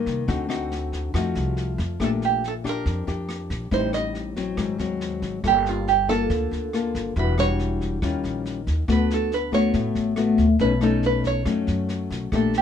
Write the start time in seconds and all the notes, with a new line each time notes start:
Already playing: G2 D#3 A#3 D#4
0.06 C2, kick, snare
0.27 D2 D3 C4 D#4 F#4, kick, snare
0.49 C4 D#4 F#4, cross-stick, snare
0.72 snare
0.93 kick, snare
1.14 F2 F3 A3 D#4 F#4, kick, cross-stick, snare
1.35 C2, snare
1.57 snare
1.78 F2, kick, snare
2.00 A#1 A#2 A3 D4 G4, kick, cross-stick, snare
2.04 A4
2.22 G4, snare
2.44 A4, snare
2.64 D4 G4, kick, cross-stick, snare
2.69 A#4
2.85 F2, kick, snare
3.07 F2 D4 G4, snare
3.29 cross-stick, snare
3.50 A#1, kick, snare
3.71 A1 A2 G3 C4 D#4 C5, kick, snare
3.93 D#5, cross-stick, snare
4.15 snare
4.36 F#3 C4, kick, snare
4.57 G#1 G#2, kick, cross-stick, snare
4.78 D#2 F#3 C4, snare
5.01 snare
5.22 G#1, kick, snare
5.44 G1 G3 A#3 F4 G4 A4, kick, cross-stick, snare
5.66 F4, snare
5.87 G4, snare
6.08 A#3 F4 A4, kick, cross-stick, snare
6.30 D2 D3, kick, snare
6.51 D2, snare
6.73 A#3 F4 A4, cross-stick, snare
6.95 G1, kick, snare
7.16 E1 E3 G3 D4 F#4 B4, kick, snare
7.38 G3 D4 F#4 C#5, cross-stick, snare
7.59 snare
7.81 kick, snare
8.02 D#2 D#3 G3 C#4 F4, kick, cross-stick, snare
8.24 A#1, snare
8.45 snare
8.67 D#2, kick, snare
8.88 D2 D3 A3 B3 F#4, kick, cross-stick, snare
8.92 B4
9.10 A4, snare
9.32 B4, snare
9.52 A3 B3 F#4 C#5, kick, cross-stick, snare
9.74 A1 A2, kick, snare
9.95 A1, snare
10.16 A3 B3 F#4, cross-stick, snare
10.38 D2, kick, snare
10.59 B1 B2 A3 C#4 D#4 B4, kick, snare
10.81 A3 C#4 D#4 A4, cross-stick, snare
11.03 B4, snare
11.24 C#5, kick, snare
11.45 F#2 F#3 A3 C#4 D#4, kick, cross-stick, snare
11.67 F#2, snare
11.89 snare
12.10 B1, kick, snare
12.32 A#1 A#2 A3 D4 G4 A4, kick, cross-stick, snare
12.54 snare
12.58 G4